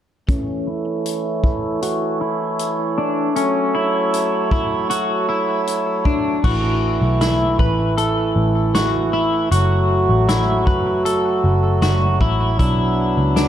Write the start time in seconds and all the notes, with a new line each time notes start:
0.29 E3 A3 C#4 A4 C#5, kick, closed hi-hat
0.67 E4
1.06 closed hi-hat
1.44 E4, kick
1.82 F#4, closed hi-hat
2.21 E4
2.59 closed hi-hat
2.98 D4
3.36 F#3 C#4, closed hi-hat
3.75 E4
4.14 closed hi-hat
4.51 E4, kick
4.90 F#4, closed hi-hat
5.29 E4
5.67 closed hi-hat
6.05 D4, kick
6.44 A1 E3 A3 E4 F#4, kick, crash
7.02 B1
7.21 E4, snare, closed hi-hat
7.59 A1 B4, kick
7.98 A4, closed hi-hat
8.36 A1
8.75 F#4, snare, closed hi-hat
9.13 E4
9.52 F#1 F#3 A3 F#4, closed hi-hat
10.09 A1
10.29 E4, snare, closed hi-hat
10.67 F#1 B4, kick
11.05 A4, closed hi-hat
11.44 F#1
11.82 F#1 F#4, snare, closed hi-hat
12.21 A1 E4, kick
12.59 B1 B3 D4 E4, kick, closed hi-hat
13.17 C#2
13.36 D4, snare, closed hi-hat